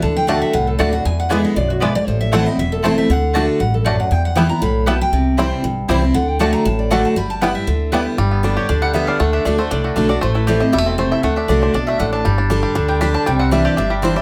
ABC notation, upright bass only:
X:1
M:4/4
L:1/8
Q:1/4=236
K:G
V:1 name="Upright bass" clef=bass
D,,4 C,,2 D,,2 | E,,4 B,,,4 | A,,,4 E,,,4 | D,,4 A,,,4 |
E,,4 B,,,4 | C,,4 B,,,2 C,,2 | D,,4 A,,,4 | G,,,4 D,,4 |
G,,,4 D,,4 | D,,2 D,,2 C,,2 B,,,2 | A,,,4 E,,,4 | D,,2 C,,2 B,,,2 A,,,2 |
G,,,4 D,,4 | C,,4 G,,,4 |]